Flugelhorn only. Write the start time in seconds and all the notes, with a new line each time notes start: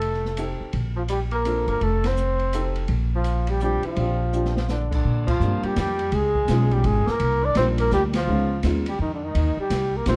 Already playing: A4
0.98 F4
1.11 G4
1.34 A#4
1.71 A#4
1.83 A4
2.07 C5
3.16 F4
3.51 G4
3.64 G4
3.87 F4
4.57 F4
4.71 D4
4.94 D4
5.29 F4
5.66 G4
5.80 G4
6.15 G#4
6.74 G4
6.87 G#4
7.11 A#4
7.45 D5
7.58 C5
7.81 A#4
7.94 G4
8.16 F4
8.89 G4
9.02 D#4
9.14 D4
9.25 D#4
9.61 G4
9.97 A#4
10.08 C5